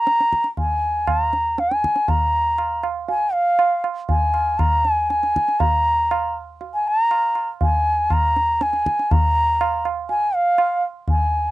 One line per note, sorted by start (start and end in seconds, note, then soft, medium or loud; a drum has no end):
0.00 0.46 A#5 loud
0.07 tabla te medium
0.20 tabla te soft
0.32 tabla ke medium
0.44 tabla te medium
0.57 1.10 G#5 medium
0.57 tabla tin medium
0.57 tabla ge medium
1.07 1.23 A5 medium
1.07 tabla na medium
1.07 tabla ge medium
1.23 1.61 A#5 medium
1.33 tabla te medium
1.58 2.11 G#5 medium
1.58 tabla te medium
1.71 tabla te medium
1.84 tabla ke medium
1.96 tabla te medium
2.08 2.85 A#5 medium
2.08 tabla tin medium
2.08 tabla ge medium
2.58 tabla na medium
2.83 tabla na medium
3.09 3.35 G#5 medium
3.09 tabla tin medium
3.33 3.84 F5 medium
3.59 tabla na medium
3.84 tabla na medium
4.09 4.61 G#5 medium
4.09 tabla tin medium
4.09 tabla ge medium
4.34 tabla na medium
4.59 4.93 A#5 medium
4.59 tabla na medium
4.59 tabla ge medium
4.85 tabla te medium
4.93 5.10 G#5 medium
5.10 5.61 G#5 medium
5.10 tabla te medium
5.23 tabla te medium
5.36 tabla ke medium
5.48 tabla te medium
5.60 6.35 A#5 medium
5.60 tabla tin medium
5.60 tabla ge medium
6.11 tabla na medium
6.61 tabla tin medium
6.74 6.89 G#5 medium
6.88 7.49 A#5 loud
7.11 tabla na medium
7.35 tabla na medium
7.61 8.14 G#5 medium
7.61 tabla tin medium
7.61 tabla ge medium
8.10 8.64 A#5 medium
8.10 tabla na medium
8.10 tabla ge medium
8.37 tabla te medium
8.61 9.13 G#5 medium
8.61 tabla te medium
8.73 tabla te medium
8.86 tabla ke medium
8.99 tabla te medium
9.11 9.85 A#5 medium
9.11 tabla tin medium
9.11 tabla ge medium
9.61 tabla na medium
9.85 tabla na medium
10.09 10.37 G#5 medium
10.09 tabla tin medium
10.35 10.84 F5 medium
10.58 tabla na medium
11.08 11.51 G#5 medium
11.08 tabla tin medium
11.08 tabla ge medium